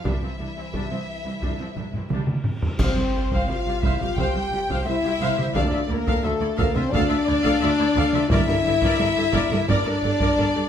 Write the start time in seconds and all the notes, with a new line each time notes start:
0.03 C2 E3 G3 D4 E4 E5, taiko
0.22 C2 F3 C4
0.39 C2 G3 D4
0.57 C2 E3 C4
0.73 C2 G3 D4, taiko
0.90 C2 F3 C4
1.25 C2 E3 C4
1.41 C2 G3 D4, taiko
1.59 C2 F3 C4
1.76 C2 G3 D4, taiko low-mid
1.93 C2 E3 C4, taiko low-mid
2.10 C2 G3 D4, taiko mid
2.27 taiko mid
2.45 taiko low-mid
2.62 C2 E3 C4, taiko low
2.78 C2 C4 C5 F5, concert bass drum, taiko, crash
2.96 C2 G4 C5
3.13 C2 F4 G4
3.32 C2 C5 F5, taiko
3.47 C2 F4 C5 F5
3.51 G4
3.67 C2 F4 G4
3.82 C2 E4 C5 E5 F5, taiko
3.98 C2 F4 G4 C5 F5, taiko mid
4.15 C2 G4 C5 F5 G5, taiko
4.34 C2 G4 C5
4.52 C2 F4 G4
4.70 C2 C5 F5, taiko
4.85 C2 E4 G4 C5 E5
5.03 C2 F4 G4
5.21 C2 C5 F5
5.37 C2 G4 C5, taiko mid
5.54 D2 D3 D4 A4 D5 F5, taiko
5.71 D2 F4 E5
5.89 D2 A#3 E4 A#4 D5
6.06 D2 A4 F5, taiko
6.22 D2 A3 F4 A4 E5
6.40 D2 E4 D5
6.57 D2 A#3 A4 A#4 F5, taiko
6.74 D2 C4 F4 C5 E5, taiko mid
6.90 D2 D4 A4 D5 F5, taiko
6.94 D2
7.09 D2 F4 E5
7.27 D2 E4 D5
7.43 D2 A4 F5, taiko
7.60 D2 F4 E5
7.79 D2 E4 D5
7.96 D2 A4 F5
8.13 D2 F4 E5, taiko mid
8.29 G1 G2 E4 A#4 D5 E5, taiko
8.47 G2 A4 A#4
8.65 G1 G2 G4 A4
8.82 G2 A#4 D5, taiko
8.99 G1 G2 A4 A#4
9.16 G2 G4 A4
9.32 G1 G2 A#4 D5, taiko
9.51 G2 A4 A#4, taiko mid
9.67 G1 G2 D4 A#4 D5, taiko
9.86 G2 A4 A#4
10.02 G1 G2 G4 A4
10.20 G2 A#4 D5, taiko
10.37 G1 G2 A4 A#4
10.54 G2 G4 A4